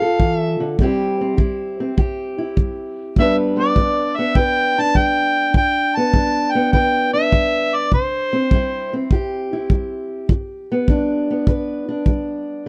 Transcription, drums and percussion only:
0.20 kick medium
0.79 kick medium
1.38 kick medium
1.98 kick medium
2.57 kick medium
3.16 kick medium
3.76 kick medium
4.35 kick medium
4.95 kick medium
5.54 kick medium
6.14 kick medium
6.73 kick medium
7.32 kick medium
7.92 kick medium
8.51 kick medium
9.11 kick medium
9.70 kick medium
10.29 kick medium
10.88 kick medium
11.47 kick medium
12.06 kick medium

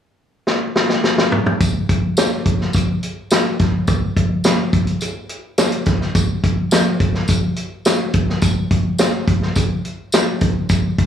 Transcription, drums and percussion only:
0.47 snare medium
0.76 snare medium
0.89 snare medium
1.04 snare medium
1.18 snare medium
1.32 mid tom medium
1.46 mid tom medium
1.60 kick medium
1.60 closed hi-hat medium
1.60 tambourine medium
1.89 kick medium
1.89 closed hi-hat medium
2.17 snare loud
2.17 closed hi-hat medium
2.17 tambourine medium
2.46 kick medium
2.46 closed hi-hat medium
2.61 snare soft
2.73 kick medium
2.73 closed hi-hat medium
2.73 tambourine medium
3.03 closed hi-hat medium
3.31 snare medium
3.31 closed hi-hat medium
3.31 tambourine medium
3.59 kick medium
3.59 snare soft
3.59 closed hi-hat medium
3.87 kick loud
3.87 closed hi-hat medium
3.87 tambourine medium
4.17 kick medium
4.17 closed hi-hat medium
4.44 snare loud
4.44 closed hi-hat medium
4.44 tambourine medium
4.73 kick medium
4.73 closed hi-hat medium
4.87 closed hi-hat soft
5.01 closed hi-hat medium
5.01 tambourine medium
5.29 closed hi-hat medium
5.58 snare loud
5.58 closed hi-hat medium
5.58 tambourine medium
5.72 closed hi-hat medium
5.86 kick medium
5.86 snare soft
5.86 closed hi-hat medium
6.01 snare soft
6.15 kick loud
6.15 closed hi-hat medium
6.15 tambourine medium
6.44 kick medium
6.44 closed hi-hat medium
6.71 snare loud
6.71 closed hi-hat medium
6.71 tambourine medium
7.00 kick medium
7.00 closed hi-hat medium
7.14 snare soft
7.28 kick medium
7.28 closed hi-hat medium
7.28 tambourine medium
7.56 closed hi-hat medium
7.85 snare medium
7.85 closed hi-hat medium
7.85 tambourine medium
8.13 kick medium
8.13 closed hi-hat medium
8.29 snare soft
8.42 kick loud
8.42 closed hi-hat medium
8.42 tambourine medium
8.71 kick medium
8.71 closed hi-hat medium
8.98 snare loud
8.98 closed hi-hat medium
8.98 tambourine medium
9.28 kick medium
9.28 closed hi-hat medium
9.42 snare soft
9.56 kick medium
9.56 closed hi-hat medium
9.56 tambourine medium
9.85 closed hi-hat medium
10.12 snare medium
10.12 closed hi-hat medium
10.12 tambourine medium
10.41 kick medium
10.41 closed hi-hat medium
10.69 kick medium
10.69 closed hi-hat medium
10.69 tambourine medium
10.98 kick medium
10.98 closed hi-hat medium

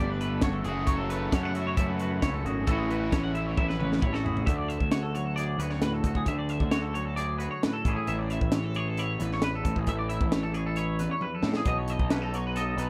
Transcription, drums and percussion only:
0.21 closed hi-hat medium
0.41 kick loud
0.41 snare loud
0.41 closed hi-hat medium
0.64 closed hi-hat medium
0.87 kick loud
0.87 closed hi-hat medium
1.10 closed hi-hat medium
1.32 kick loud
1.32 snare loud
1.32 closed hi-hat medium
1.55 closed hi-hat medium
1.77 kick loud
1.77 closed hi-hat medium
2.00 closed hi-hat medium
2.22 kick loud
2.22 snare loud
2.22 closed hi-hat medium
2.46 closed hi-hat medium
2.67 kick loud
2.67 closed hi-hat medium
2.91 closed hi-hat medium
3.12 kick loud
3.12 snare loud
3.12 closed hi-hat medium
3.35 closed hi-hat medium
3.57 kick loud
3.57 high tom medium
3.70 snare medium
3.80 mid tom medium
3.92 snare medium
4.02 kick loud
4.02 mid tom medium
4.14 snare medium
4.26 floor tom medium
4.37 floor tom medium
4.47 kick loud
4.47 closed hi-hat medium
4.70 closed hi-hat medium
4.80 kick medium
4.91 snare loud
4.91 closed hi-hat medium
5.15 closed hi-hat medium
5.37 closed hi-hat medium
5.60 closed hi-hat medium
5.70 snare soft
5.82 snare medium
5.82 closed hi-hat medium
6.04 kick medium
6.04 closed hi-hat medium
6.15 kick medium
6.26 kick medium
6.26 closed hi-hat medium
6.49 closed hi-hat medium
6.60 kick medium
6.71 snare loud
6.71 closed hi-hat medium
6.95 closed hi-hat medium
7.17 closed hi-hat medium
7.40 closed hi-hat medium
7.63 snare loud
7.63 closed hi-hat medium
7.85 kick loud
7.85 closed hi-hat medium
8.07 closed hi-hat medium
8.30 closed hi-hat medium
8.41 kick medium
8.52 snare loud
8.52 closed hi-hat medium
8.75 closed hi-hat medium
8.97 closed hi-hat medium
9.20 closed hi-hat medium
9.32 snare soft
9.42 snare loud
9.42 closed hi-hat medium
9.65 kick medium
9.65 closed hi-hat medium
9.76 kick medium
9.87 kick medium
9.87 closed hi-hat medium
10.10 closed hi-hat medium
10.21 kick medium
10.32 snare loud
10.32 closed hi-hat medium
10.54 closed hi-hat medium
10.76 closed hi-hat medium
10.99 closed hi-hat medium
11.21 high tom soft
11.43 snare medium
11.54 snare medium
11.65 kick loud
11.65 closed hi-hat medium
11.88 closed hi-hat medium
11.99 kick medium
12.10 snare loud
12.10 closed hi-hat medium
12.34 closed hi-hat medium
12.56 closed hi-hat medium
12.78 closed hi-hat medium

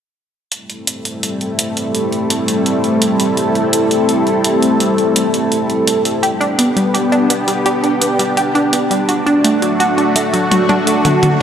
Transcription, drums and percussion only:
0.52 closed hi-hat medium
0.70 closed hi-hat soft
0.87 closed hi-hat medium
1.05 closed hi-hat medium
1.23 closed hi-hat medium
1.41 closed hi-hat soft
1.59 closed hi-hat medium
1.77 closed hi-hat medium
1.95 closed hi-hat medium
2.12 closed hi-hat soft
2.30 closed hi-hat medium
2.48 closed hi-hat medium
2.66 closed hi-hat medium
2.84 closed hi-hat soft
3.02 closed hi-hat medium
3.20 closed hi-hat medium
3.37 closed hi-hat medium
3.55 closed hi-hat soft
3.73 closed hi-hat medium
3.91 closed hi-hat medium
4.09 closed hi-hat medium
4.27 closed hi-hat soft
4.44 closed hi-hat medium
4.62 closed hi-hat soft
4.80 closed hi-hat medium
4.98 closed hi-hat soft
5.16 closed hi-hat medium
5.34 closed hi-hat medium
5.52 closed hi-hat medium
5.70 closed hi-hat soft
5.87 closed hi-hat medium
6.05 closed hi-hat medium
6.23 closed hi-hat medium
6.41 closed hi-hat soft
6.59 closed hi-hat medium
6.77 closed hi-hat medium
6.95 closed hi-hat medium
7.12 closed hi-hat soft
7.30 closed hi-hat medium
7.48 closed hi-hat medium
7.66 closed hi-hat medium
7.84 closed hi-hat soft
8.02 closed hi-hat medium
8.19 closed hi-hat medium
8.37 closed hi-hat medium
8.55 closed hi-hat soft
8.73 closed hi-hat medium
8.91 closed hi-hat medium
9.09 closed hi-hat medium
9.27 closed hi-hat soft
9.45 closed hi-hat medium
9.62 closed hi-hat soft
9.80 closed hi-hat medium
9.98 closed hi-hat soft
10.16 closed hi-hat medium
10.34 closed hi-hat medium
10.52 closed hi-hat soft
10.52 high tom medium
10.69 closed hi-hat soft
10.69 high tom medium
10.87 closed hi-hat medium
11.05 closed hi-hat soft
11.05 mid tom medium
11.23 closed hi-hat soft
11.23 mid tom medium

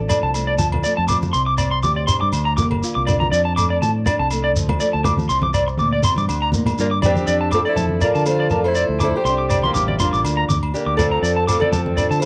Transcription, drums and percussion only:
0.09 low conga medium
0.09 low agogo medium
0.09 shekere medium
0.34 low agogo medium
0.34 shekere medium
0.58 high conga medium
0.58 shekere medium
0.72 low conga medium
0.72 low agogo medium
0.84 shekere medium
1.08 low conga medium
1.08 low agogo medium
1.08 shekere medium
1.22 high conga medium
1.22 shekere soft
1.34 shekere medium
1.58 low agogo medium
1.58 shekere medium
1.83 high conga medium
1.83 shekere medium
2.08 low conga medium
2.08 low agogo medium
2.08 shekere loud
2.33 low agogo medium
2.33 shekere medium
2.57 high conga medium
2.57 shekere medium
2.71 low conga medium
2.71 low agogo medium
2.83 shekere medium
3.07 low conga medium
3.07 low agogo medium
3.07 shekere medium
3.21 high conga medium
3.33 shekere medium
3.57 low agogo medium
3.57 shekere medium
3.82 high conga medium
3.82 shekere medium
4.06 low conga medium
4.06 low agogo medium
4.06 shekere medium
4.31 low agogo medium
4.31 shekere medium
4.56 shekere loud
4.69 low conga medium
4.69 low agogo medium
4.80 shekere medium
5.04 low conga medium
5.04 low agogo medium
5.04 shekere medium
5.17 high conga medium
5.17 shekere soft
5.30 shekere medium
5.42 high conga medium
5.54 low agogo medium
5.54 shekere medium
5.68 shekere soft
5.77 high conga medium
5.77 shekere medium
6.02 low conga medium
6.02 low agogo medium
6.02 shekere medium
6.16 high conga medium
6.16 shekere soft
6.29 low agogo medium
6.29 shekere medium
6.52 high conga medium
6.52 shekere loud
6.66 low conga medium
6.66 low agogo medium
6.66 shekere soft
6.78 shekere medium
7.02 low conga medium
7.02 low agogo medium
7.02 shekere medium
7.15 high conga medium
7.15 shekere soft
7.27 shekere medium
7.51 low agogo medium
7.51 shekere medium
7.76 low conga medium
7.76 shekere medium
7.89 high conga medium
8.01 low conga medium
8.01 low agogo medium
8.01 shekere medium
8.15 shekere soft
8.26 low agogo medium
8.26 shekere medium
8.50 high conga medium
8.50 shekere medium
8.64 low agogo medium
8.75 shekere medium
9.00 low conga medium
9.00 low agogo medium
9.00 shekere medium
9.26 shekere medium
9.50 low conga medium
9.50 low agogo medium
9.50 shekere loud
9.64 high conga medium
9.75 low conga medium
9.75 shekere medium
9.88 high conga medium
9.99 low conga medium
9.99 low agogo medium
9.99 shekere medium
10.14 shekere soft
10.24 low agogo medium
10.24 shekere medium
10.50 high conga medium
10.50 shekere loud
10.63 low agogo medium
10.75 shekere medium
10.99 low conga medium
10.99 low agogo medium
10.99 shekere medium
11.24 shekere medium
11.48 low agogo medium
11.48 shekere medium
11.62 high conga medium
11.73 low conga medium
11.73 shekere medium
11.86 high conga medium
11.97 low conga medium
11.97 low agogo medium
11.97 shekere medium
12.11 shekere soft
12.22 low agogo medium

